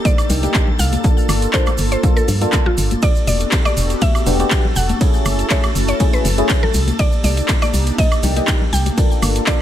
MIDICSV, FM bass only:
0, 0, Header, 1, 2, 480
1, 0, Start_track
1, 0, Tempo, 495868
1, 1009, Time_signature, 4, 2, 24, 8
1, 9309, End_track
2, 0, Start_track
2, 0, Title_t, "FM bass"
2, 0, Program_c, 0, 39
2, 288, Note_on_c, 0, 36, 100
2, 460, Note_off_c, 0, 36, 0
2, 769, Note_on_c, 0, 36, 96
2, 940, Note_off_c, 0, 36, 0
2, 1249, Note_on_c, 0, 31, 108
2, 1420, Note_off_c, 0, 31, 0
2, 1729, Note_on_c, 0, 31, 83
2, 1901, Note_off_c, 0, 31, 0
2, 2209, Note_on_c, 0, 43, 100
2, 2381, Note_off_c, 0, 43, 0
2, 2689, Note_on_c, 0, 31, 95
2, 2861, Note_off_c, 0, 31, 0
2, 3169, Note_on_c, 0, 28, 108
2, 3341, Note_off_c, 0, 28, 0
2, 3649, Note_on_c, 0, 28, 85
2, 3821, Note_off_c, 0, 28, 0
2, 4129, Note_on_c, 0, 28, 105
2, 4300, Note_off_c, 0, 28, 0
2, 4609, Note_on_c, 0, 28, 96
2, 4780, Note_off_c, 0, 28, 0
2, 5089, Note_on_c, 0, 30, 101
2, 5260, Note_off_c, 0, 30, 0
2, 5569, Note_on_c, 0, 30, 86
2, 5741, Note_off_c, 0, 30, 0
2, 6048, Note_on_c, 0, 30, 106
2, 6220, Note_off_c, 0, 30, 0
2, 6528, Note_on_c, 0, 36, 97
2, 6700, Note_off_c, 0, 36, 0
2, 7008, Note_on_c, 0, 36, 104
2, 7180, Note_off_c, 0, 36, 0
2, 7489, Note_on_c, 0, 36, 86
2, 7660, Note_off_c, 0, 36, 0
2, 7969, Note_on_c, 0, 36, 106
2, 8140, Note_off_c, 0, 36, 0
2, 8449, Note_on_c, 0, 36, 98
2, 8621, Note_off_c, 0, 36, 0
2, 8929, Note_on_c, 0, 31, 99
2, 9101, Note_off_c, 0, 31, 0
2, 9309, End_track
0, 0, End_of_file